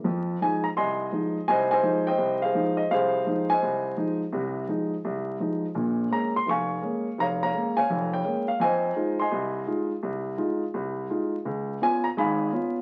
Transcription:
0.04 0.36 F2 medium
0.04 0.36 F3 medium
0.42 0.65 F3 soft
0.42 0.66 G#3 soft
0.42 0.66 D#4 medium
0.42 0.63 G#5 medium
0.64 0.69 A#5 medium
0.77 1.08 C2 medium
0.77 1.44 D#5 medium
0.77 1.45 G#5 medium
0.77 1.44 C6 medium
1.12 1.36 F3 soft
1.12 1.37 G#3 soft
1.12 1.37 D#4 soft
1.48 1.79 C2 medium
1.48 1.72 C5 medium
1.48 1.71 D#5 medium
1.48 1.69 G#5 medium
1.71 2.07 C5 medium
1.71 2.07 D#5 medium
1.71 2.08 G#5 medium
1.83 2.07 F3 soft
1.83 2.08 G#3 soft
1.83 2.08 D#4 medium
2.07 2.42 C5 medium
2.07 2.75 D#5 medium
2.07 2.40 G5 medium
2.18 2.49 C2 medium
2.42 2.92 G#4 medium
2.42 2.92 C5 medium
2.42 2.79 F5 medium
2.55 2.79 F3 soft
2.55 2.79 G#3 soft
2.55 2.79 D#4 medium
2.77 2.89 D#5 medium
2.91 3.21 C2 medium
2.91 3.59 G#4 medium
2.91 3.50 C5 medium
2.91 3.45 F5 medium
3.27 3.51 F3 soft
3.27 3.51 G#3 soft
3.27 3.51 D#4 medium
3.50 4.18 C5 medium
3.50 4.17 D#5 medium
3.50 4.17 G#5 medium
3.62 3.93 C2 medium
3.97 4.21 F3 soft
3.97 4.22 G#3 soft
3.97 4.22 D#4 medium
4.32 4.64 C2 medium
4.32 4.64 C3 medium
4.68 4.93 F3 soft
4.68 4.93 G#3 soft
4.68 4.93 D#4 medium
5.05 5.35 C2 medium
5.40 5.64 F3 soft
5.40 5.64 G#3 soft
5.40 5.65 D#4 soft
5.75 6.06 A#1 medium
5.75 6.06 A#2 medium
6.10 6.35 G#3 soft
6.10 6.35 A#3 soft
6.10 6.35 C#4 medium
6.10 6.33 A#5 medium
6.36 6.47 C6 medium
6.46 6.77 F1 medium
6.46 7.15 C#6 medium
6.50 7.16 F5 medium
6.50 7.16 G#5 medium
6.82 7.06 G#3 soft
6.82 7.06 A#3 soft
6.82 7.07 C#4 medium
7.18 7.49 F1 medium
7.18 7.42 C#5 medium
7.18 7.43 F5 medium
7.18 7.25 A#5 medium
7.43 7.77 C#5 medium
7.43 7.76 F5 medium
7.43 7.75 A#5 medium
7.54 7.78 G#3 soft
7.54 7.78 A#3 soft
7.54 7.78 C#4 medium
7.77 8.13 C#5 medium
7.77 8.44 F5 medium
7.77 8.13 G#5 medium
7.90 8.20 F1 medium
7.90 8.20 F2 medium
8.13 8.58 C#5 medium
8.13 8.50 G5 medium
8.24 8.49 G#3 soft
8.24 8.49 A#3 soft
8.24 8.49 C#4 medium
8.48 8.61 F5 medium
8.60 8.91 F2 medium
8.60 9.29 C5 medium
8.60 9.20 D#5 medium
8.60 9.16 G#5 medium
8.96 9.20 G#3 soft
8.96 9.20 D#4 soft
8.96 9.20 F4 medium
9.20 9.88 D#5 medium
9.20 9.88 G#5 medium
9.20 9.87 C6 medium
9.32 9.63 C2 medium
9.67 9.91 G#3 soft
9.67 9.92 D#4 soft
9.67 9.92 F4 soft
10.03 10.34 C2 medium
10.38 10.62 G#3 soft
10.38 10.62 D#4 soft
10.38 10.63 F4 medium
10.74 11.05 C2 medium
11.10 11.34 G#3 soft
11.10 11.34 D#4 soft
11.10 11.35 F4 medium
11.45 11.76 C#2 medium
11.81 12.05 B3 soft
11.81 12.06 C#4 soft
11.81 12.06 F4 medium
11.81 12.06 G#5 medium
12.04 12.09 A#5 medium
12.17 12.48 G#1 medium
12.17 12.48 G#2 medium
12.17 12.82 F5 medium
12.17 12.82 G#5 medium
12.17 12.72 B5 medium
12.52 12.77 B3 soft
12.52 12.77 C#4 soft
12.52 12.77 F4 medium

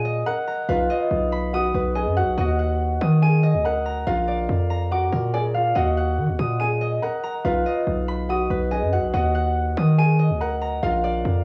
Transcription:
0.00 0.24 A#2 loud
0.00 0.24 G#4 medium
0.00 0.48 A#4 medium
0.00 0.26 F#5 medium
0.00 0.24 G#5 medium
0.00 0.81 D#6 medium
0.00 0.89 D#7 loud
0.05 0.89 D#5 medium
0.26 0.67 A#4 medium
0.26 1.87 F#5 medium
0.26 0.66 A#5 medium
0.48 0.75 A#5 medium
0.69 0.89 B1 loud
0.69 1.50 F4 medium
0.69 1.74 B4 loud
0.69 1.49 F5 loud
0.90 1.95 D#5 medium
1.11 1.72 B1 loud
1.32 2.67 B5 medium
1.53 1.93 F#4 medium
1.53 1.93 F#5 medium
1.53 2.72 D#6 loud
1.74 2.08 B1 loud
1.74 3.79 B4 medium
1.95 2.15 G#4 medium
1.95 2.37 D#5 medium
1.95 2.15 G#5 medium
2.06 2.23 F#2 loud
2.16 2.36 F#4 medium
2.16 2.36 F#5 medium
2.16 2.58 F#5 loud
2.22 2.37 B1 loud
2.38 2.99 D#2 loud
2.38 3.19 F#4 medium
2.38 3.43 D#5 medium
2.38 3.18 F#5 loud
2.59 3.65 F#5 medium
3.01 3.55 D#3 loud
3.01 4.19 D#6 medium
3.22 3.62 G#4 medium
3.22 3.62 G#5 medium
3.22 4.27 D#7 loud
3.43 4.34 D#5 medium
3.54 4.04 D2 loud
3.65 4.05 A#4 medium
3.65 5.26 F#5 medium
3.65 4.04 A#5 medium
3.85 4.70 A#5 medium
4.07 4.47 A#1 loud
4.07 4.88 F4 medium
4.07 5.12 A#4 medium
4.07 4.87 F5 loud
4.28 5.33 D5 medium
4.49 5.10 F2 loud
4.70 6.10 A#5 medium
4.91 5.31 F#4 medium
4.91 5.31 F#5 medium
4.91 5.81 D6 loud
5.12 5.73 A#2 loud
5.12 7.24 A#4 medium
5.33 5.53 G#4 medium
5.33 5.81 D5 medium
5.33 5.53 G#5 medium
5.54 5.74 F4 medium
5.54 6.03 F5 medium
5.54 5.74 F5 medium
5.75 6.19 D#2 loud
5.75 6.57 F#4 medium
5.75 6.81 D#5 loud
5.75 6.56 F#5 loud
5.97 7.02 F#5 medium
6.18 6.30 D#3 loud
6.29 6.39 D#2 loud
6.39 7.00 A#2 loud
6.39 7.57 D#6 medium
6.60 7.00 G#4 medium
6.60 7.00 G#5 medium
6.60 7.65 D#7 loud
6.81 7.66 D#5 medium
7.02 7.43 A#4 medium
7.02 8.63 F#5 medium
7.02 7.42 A#5 medium
7.24 7.51 A#5 medium
7.45 7.65 B1 loud
7.45 8.26 F4 medium
7.45 8.50 B4 medium
7.45 8.25 F5 loud
7.66 8.71 D#5 medium
7.87 8.48 B1 loud
8.08 9.43 B5 medium
8.29 8.69 F#4 medium
8.29 8.69 F#5 medium
8.29 9.48 D#6 loud
8.50 8.84 B1 loud
8.50 10.55 B4 medium
8.71 8.91 G#4 medium
8.71 9.14 D#5 medium
8.71 8.91 G#5 medium
8.82 8.99 F#2 loud
8.93 9.12 F#4 medium
8.93 9.12 F#5 medium
8.93 9.34 F#5 loud
8.98 9.13 B1 loud
9.14 9.75 D#2 loud
9.14 9.95 F#4 medium
9.14 10.19 D#5 medium
9.14 9.94 F#5 loud
9.35 10.41 F#5 medium
9.77 10.32 D#3 loud
9.77 10.95 D#6 medium
9.98 10.38 G#4 medium
9.98 10.38 G#5 medium
9.98 11.04 D#7 loud
10.19 11.10 D#5 medium
10.30 10.80 D2 loud
10.41 10.81 A#4 medium
10.41 11.44 F#5 medium
10.41 10.80 A#5 medium
10.62 11.44 A#5 medium
10.83 11.23 A#1 loud
10.83 11.44 F4 medium
10.83 11.44 A#4 medium
10.83 11.44 F5 loud
11.04 11.44 D5 medium
11.25 11.44 F2 loud

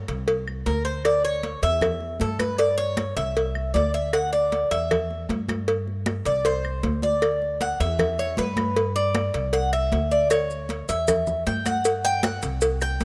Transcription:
0.08 0.62 C2 medium
0.08 cowbell medium
0.28 cowbell loud
0.28 high conga soft
0.47 high conga soft
0.47 claves medium
0.66 1.57 D2 medium
0.66 0.84 A#4 medium
0.66 cowbell medium
0.66 high conga medium
0.85 1.04 C5 medium
1.05 1.24 D5 medium
1.05 cowbell loud
1.05 high conga soft
1.05 claves medium
1.24 1.60 C#5 loud
1.24 high conga soft
1.43 cowbell medium
1.43 high conga medium
1.62 2.17 E2 medium
1.62 2.17 E5 loud
1.62 cowbell medium
1.62 high conga soft
1.81 cowbell loud
1.81 high conga soft
1.81 low conga medium
1.81 claves medium
2.01 high conga soft
2.20 3.11 G2 medium
2.20 2.39 A4 medium
2.20 cowbell medium
2.20 high conga medium
2.39 2.59 B4 medium
2.39 cowbell medium
2.39 high conga medium
2.39 claves medium
2.58 2.77 D5 medium
2.58 cowbell medium
2.58 high conga soft
2.78 3.14 C#5 loud
2.78 high conga soft
2.97 cowbell medium
2.97 high conga loud
2.97 claves medium
3.17 3.71 C2 medium
3.17 3.71 E5 medium
3.17 cowbell medium
3.36 cowbell loud
3.36 high conga soft
3.55 high conga soft
3.55 claves medium
3.74 4.65 D2 medium
3.74 3.93 D5 medium
3.74 cowbell medium
3.74 high conga medium
3.94 4.13 E5 medium
4.13 4.32 F#5 medium
4.13 cowbell loud
4.13 high conga soft
4.13 claves medium
4.33 4.69 D5 medium
4.33 high conga soft
4.52 cowbell medium
4.52 high conga medium
4.71 5.25 E2 medium
4.71 5.25 E5 medium
4.71 cowbell medium
4.71 high conga soft
4.91 cowbell loud
4.91 high conga soft
4.91 low conga medium
4.91 claves medium
5.10 high conga soft
5.29 6.20 G2 medium
5.29 cowbell medium
5.29 high conga medium
5.49 cowbell medium
5.49 high conga medium
5.49 claves medium
5.68 cowbell loud
5.68 high conga soft
5.87 high conga soft
6.06 cowbell medium
6.06 high conga medium
6.06 claves medium
6.25 6.80 C2 medium
6.25 6.45 D5 medium
6.25 cowbell medium
6.45 6.99 C5 medium
6.45 cowbell loud
6.45 high conga soft
6.64 high conga soft
6.64 claves medium
6.83 7.74 D2 medium
6.83 cowbell medium
6.83 high conga medium
7.02 7.57 D5 medium
7.02 high conga medium
7.22 cowbell loud
7.22 high conga soft
7.22 claves medium
7.42 high conga soft
7.61 7.80 F#5 medium
7.61 cowbell medium
7.61 high conga medium
7.80 8.34 E2 medium
7.80 8.34 E5 medium
7.80 cowbell medium
7.80 high conga soft
7.99 cowbell medium
7.99 high conga soft
7.99 low conga medium
7.99 claves medium
8.18 8.38 C#5 medium
8.18 high conga soft
8.37 9.28 G2 medium
8.37 8.92 B4 medium
8.37 cowbell medium
8.37 high conga medium
8.56 cowbell medium
8.56 high conga medium
8.56 claves medium
8.76 cowbell loud
8.76 high conga soft
8.95 9.50 D5 loud
8.95 high conga soft
9.15 cowbell medium
9.15 high conga medium
9.15 claves medium
9.34 9.88 C2 medium
9.34 cowbell medium
9.53 9.72 F#5 loud
9.53 cowbell loud
9.53 high conga soft
9.73 10.27 E5 medium
9.73 high conga soft
9.73 claves medium
9.92 10.83 D2 medium
9.92 cowbell medium
9.92 high conga medium
10.11 10.30 D5 medium
10.30 10.84 C#5 medium
10.30 cowbell loud
10.30 high conga soft
10.30 claves medium
10.30 maracas medium
10.50 high conga soft
10.50 maracas soft
10.69 cowbell medium
10.69 high conga medium
10.69 maracas soft
10.89 11.43 E2 medium
10.89 11.43 E5 medium
10.89 cowbell medium
10.89 high conga soft
10.89 maracas medium
11.08 cowbell loud
11.08 high conga soft
11.08 low conga medium
11.08 claves medium
11.08 maracas medium
11.27 high conga soft
11.27 low conga medium
11.27 maracas soft
11.47 12.37 G2 medium
11.47 11.65 G5 loud
11.47 cowbell medium
11.47 high conga medium
11.47 maracas soft
11.66 12.20 F#5 medium
11.66 cowbell medium
11.66 high conga medium
11.66 claves medium
11.66 maracas medium
11.85 cowbell loud
11.85 high conga soft
11.85 maracas medium
12.04 12.23 G5 loud
12.04 high conga soft
12.04 maracas soft
12.23 12.78 F#5 medium
12.23 cowbell medium
12.23 high conga loud
12.23 claves medium
12.23 maracas soft
12.42 12.97 C2 medium
12.42 cowbell medium
12.42 maracas medium
12.61 cowbell loud
12.61 high conga soft
12.61 maracas medium
12.81 13.04 G5 loud
12.81 high conga soft
12.81 claves medium
12.81 maracas soft
13.00 13.04 D2 medium
13.00 cowbell medium
13.00 high conga medium
13.00 maracas soft

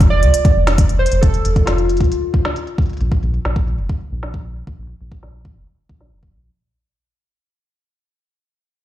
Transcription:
0.00 0.24 F1 medium
0.00 kick loud
0.00 closed hi-hat soft
0.10 0.74 D5 loud
0.23 0.31 C2 loud
0.23 closed hi-hat soft
0.34 closed hi-hat medium
0.45 kick loud
0.45 closed hi-hat soft
0.56 1.07 F1 loud
0.67 snare loud
0.67 closed hi-hat soft
0.78 kick loud
0.78 closed hi-hat loud
0.89 closed hi-hat soft
0.99 1.23 C5 loud
1.06 closed hi-hat medium
1.12 1.20 F1 medium
1.12 closed hi-hat soft
1.21 1.39 F1 loud
1.21 1.68 A4 loud
1.21 kick loud
1.21 closed hi-hat medium
1.34 closed hi-hat soft
1.45 1.61 F1 loud
1.45 closed hi-hat medium
1.56 kick loud
1.56 closed hi-hat soft
1.66 2.02 F1 medium
1.66 2.73 F4 medium
1.66 snare loud
1.66 closed hi-hat medium
1.78 closed hi-hat soft
1.89 closed hi-hat medium
1.97 2.08 C2 loud
1.97 kick loud
1.97 closed hi-hat medium
2.01 closed hi-hat soft
2.04 closed hi-hat soft
2.12 closed hi-hat medium
2.34 kick loud
2.45 snare loud
2.45 closed hi-hat soft
2.56 closed hi-hat medium
2.67 closed hi-hat soft
2.78 kick loud
2.78 closed hi-hat soft
2.82 closed hi-hat soft
2.86 closed hi-hat soft
2.90 closed hi-hat soft
2.93 closed hi-hat medium
2.97 closed hi-hat medium
3.01 3.17 A#1 loud
3.01 closed hi-hat medium
3.12 kick loud
3.12 closed hi-hat soft
3.23 3.39 A#1 loud
3.23 closed hi-hat medium
3.34 closed hi-hat soft
3.45 3.80 A#1 medium
3.45 snare loud
3.45 closed hi-hat medium
3.56 kick loud
3.56 closed hi-hat soft
3.59 closed hi-hat soft
3.62 closed hi-hat soft
3.65 closed hi-hat soft
3.67 closed hi-hat medium
3.70 closed hi-hat soft
3.73 closed hi-hat soft
3.76 3.86 F1 loud
3.76 closed hi-hat soft
3.78 closed hi-hat soft
3.84 closed hi-hat soft
3.89 kick loud
3.89 closed hi-hat medium
3.95 closed hi-hat soft
4.01 closed hi-hat soft
4.12 4.62 A#1 loud
4.23 snare loud
4.23 closed hi-hat soft
4.34 kick loud
4.45 closed hi-hat soft
4.56 closed hi-hat medium
4.67 4.75 A#1 medium
4.67 kick loud
4.78 4.94 A#1 medium
4.78 closed hi-hat soft
4.81 closed hi-hat soft
4.83 closed hi-hat medium
4.85 closed hi-hat medium
4.87 closed hi-hat medium
4.89 closed hi-hat soft
5.01 5.17 A#1 loud
5.01 closed hi-hat medium
5.12 kick loud
5.23 5.58 A#1 medium
5.23 snare loud
5.23 closed hi-hat medium
5.45 kick loud
5.45 closed hi-hat soft
5.48 closed hi-hat soft
5.51 closed hi-hat soft
5.53 5.64 F1 loud
5.53 closed hi-hat soft
5.56 closed hi-hat soft
5.59 closed hi-hat soft
5.62 closed hi-hat soft
5.64 closed hi-hat medium
5.67 closed hi-hat medium
5.78 closed hi-hat soft
5.89 6.13 A#1 medium
5.89 kick loud
6.01 snare loud
6.12 6.35 F1 medium
6.12 closed hi-hat medium
6.23 kick loud
6.34 6.50 A#1 loud
6.34 closed hi-hat medium

